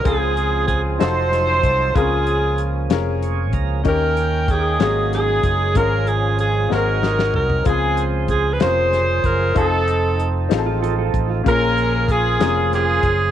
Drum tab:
HH |x-x-x-x-x-x-|x-x-x-x-x-x-|x-x-x-x-x-x-|x-x-x-------|
SD |------o-o---|------o-----|------o-o---|------o-oo--|
FT |------------|------------|------------|----------oo|
BD |o---o-----o-|o---------o-|o---o-----o-|o-----------|

HH |x-x-x-x-x-x-|x-x-x-x-x-x-|x-x-x-x-x-x-|
SD |------o-o---|------o-----|------o-o---|
FT |------------|------------|------------|
BD |o---o-----o-|o---------o-|o---o-----o-|